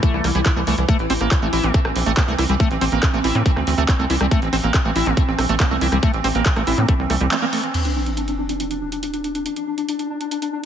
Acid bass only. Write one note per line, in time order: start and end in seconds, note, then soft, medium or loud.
0.03 0.26 A3 medium
0.24 0.30 A#3 medium
0.35 0.41 G3 medium
0.46 0.51 E4 medium
0.56 0.60 A3 medium
0.67 0.76 A3 medium
0.89 0.97 A3 loud
1.10 1.13 C4 loud
1.21 1.29 A#3 medium
1.42 1.48 A3 medium
1.53 1.65 E4 medium
1.64 1.72 A3 medium
1.74 1.80 A3 medium
2.06 2.12 A3 loud
2.17 2.23 A#3 medium
2.28 2.34 A3 medium
2.39 2.44 E4 medium
2.49 2.55 G3 medium
2.60 2.69 A3 loud
2.81 2.85 C4 loud
2.92 3.01 A#3 medium
3.13 3.19 A3 medium
3.24 3.36 E4 medium
3.35 3.44 A3 medium
3.46 3.51 A3 medium
3.78 3.84 A3 loud
3.88 3.94 A#3 medium
3.99 4.05 A3 medium
4.10 4.16 E4 medium
4.21 4.26 G3 medium
4.31 4.40 A3 loud
4.53 4.56 C4 loud
4.63 4.72 A#3 medium
4.85 4.91 A3 medium
4.96 5.08 E4 medium
5.06 5.15 A3 medium
5.17 5.23 A3 medium
5.49 5.55 A3 loud
5.60 5.66 A#3 medium
5.71 5.76 A3 medium
5.81 5.87 E4 medium
5.92 5.98 G3 medium
6.03 6.11 A3 loud
6.24 6.28 C4 loud
6.35 6.44 A#3 medium
6.56 6.62 A3 medium
6.67 6.79 E4 medium
6.78 6.86 A3 medium
6.89 6.94 A3 medium
7.10 7.16 A3 medium
7.21 7.26 G3 medium
7.31 7.37 A3 medium
7.42 7.46 A#3 loud
7.53 7.61 A3 medium